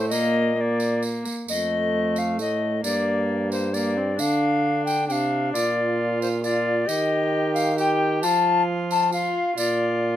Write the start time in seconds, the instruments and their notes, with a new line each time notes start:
Already playing: trombone A2, viola A3
0.09 trombone A#2, viola A#3, recorder D#5, tambourine
0.56 viola A#3, recorder D#5
0.61 recorder D5
0.80 tambourine
1.02 tambourine
1.25 tambourine
1.48 trombone F2, viola A3, recorder D#5, tambourine
2.16 recorder F5, tambourine
2.39 trombone A2, recorder D#5, tambourine
2.84 trombone G2, viola A#3, recorder D5, tambourine
3.52 recorder C5, tambourine
3.74 viola A#3, recorder D5, tambourine
3.97 viola C4
4.19 trombone D3, viola D4, recorder F5, tambourine
4.86 recorder G5, tambourine
5.08 trombone C3, viola D4, recorder F5 G5, tambourine
5.53 trombone A#2, viola F4, recorder D5, tambourine
6.22 recorder C5, tambourine
6.43 viola F4, recorder D5, tambourine
6.88 trombone D#3, viola G4, recorder D#5, tambourine
7.54 recorder F5, tambourine
7.78 viola G4, recorder G5, tambourine
8.23 trombone F3, viola F4, recorder A5, tambourine
8.91 recorder A5, tambourine
9.12 viola F4, recorder F5, tambourine
9.57 trombone A#2, viola F4, recorder D5, tambourine